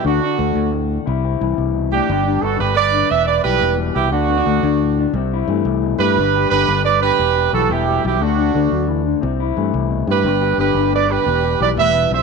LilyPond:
<<
  \new Staff \with { instrumentName = "Horn section" } { \time 12/8 \key g \major \tempo 4. = 118 <d' fis'>2 r2. r8 <d' g'>8~ | <d' g'>4 <fis' a'>8 <g' b'>8 <b' d''>4 <b' e''>8 <b' d''>8 <g' b'>4 r8 <e' g'>8 | <d' fis'>2. r2 r8 <g' b'>8~ | <g' b'>4 <g' b'>4 <b' d''>8 <g' b'>4. <fis' a'>8 <e' g'>4 <e' g'>8 |
<d' fis'>2 r2. r8 <g' b'>8~ | <g' b'>4 <g' b'>4 <b' d''>8 <g' b'>4. <b' d''>8 <b' e''>4 <c'' e''>8 | }
  \new Staff \with { instrumentName = "Clean electric guitar" } { \time 12/8 \key g \major << { d'8 d'2~ d'8 e'8 c'2~ c'8 | d'8 d'8 b8 d'4 d'8 b4 g8 b8 g8 b8 | d'8 b16 d'16 d'8 d'8 r8 d'8 c'8 e'8 a2 | d'8 g'8 b8 d'8 b8 b16 r16 b8 g'8 g8 b8 g8 b8 |
<a d'>8 d'8 d'2 c'8 e'8 a2 | d'8 g'8 b8 d'8 b8 d'8 b8 g'8 g2 | } \\ { d4 a4 a,4 c4 e8 c8 b,8 a,8 | g,4 d4 g,4 e,4 e4 b,4 | d4 a4 a,4 c4 e8 c8 b,8 a,8 | g,4 d4 g,4 e,4 e4 b,4 |
d4 a8 fis8 e8 d8 c4 e8 c8 b,8 a,8 | g,4 d4 g,4 e,4 e8 a,8 b,8 c8 | } >> }
  \new Staff \with { instrumentName = "Fingered electric bass" } { \clef bass \time 12/8 \key g \major d,8 r8 d,8 d,4. c,4 c,8 c,4. | g,,4 g,,8 g,,4. e,,4 b,,8 e,,4 c,8 | d,4 d,8 d,4. c,4 g,8 c,4 g,8 | g,,4 g,,8 g,,4. e,,4 b,,8 e,,4 b,,8 |
d,4 d,8 d,4. c,4 g,8 c,4 g,8 | g,,4 g,,8 g,,4. e,,4 b,,8 e,,4 b,,8 | }
>>